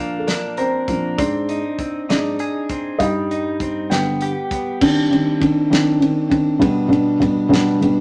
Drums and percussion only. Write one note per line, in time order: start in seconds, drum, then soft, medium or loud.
0.28 snare medium
0.28 closed hi-hat medium
0.57 closed hi-hat medium
0.88 kick medium
0.88 closed hi-hat soft
1.18 kick loud
1.18 closed hi-hat medium
1.49 closed hi-hat soft
1.79 kick medium
1.79 closed hi-hat soft
2.10 snare medium
2.10 closed hi-hat medium
2.39 closed hi-hat medium
2.69 kick medium
2.69 closed hi-hat soft
3.00 kick loud
3.00 closed hi-hat medium
3.31 closed hi-hat soft
3.60 kick medium
3.60 closed hi-hat soft
3.91 snare medium
3.91 closed hi-hat medium
4.21 closed hi-hat medium
4.51 kick medium
4.51 closed hi-hat soft
4.81 kick loud
4.81 crash loud
5.13 ride soft
5.42 kick medium
5.42 ride soft
5.73 snare loud
5.73 ride medium
6.02 ride soft
6.32 kick medium
6.32 ride soft
6.62 kick loud
6.62 ride medium
6.93 ride soft
7.22 kick medium
7.22 ride soft
7.53 snare loud
7.53 ride medium
7.82 ride medium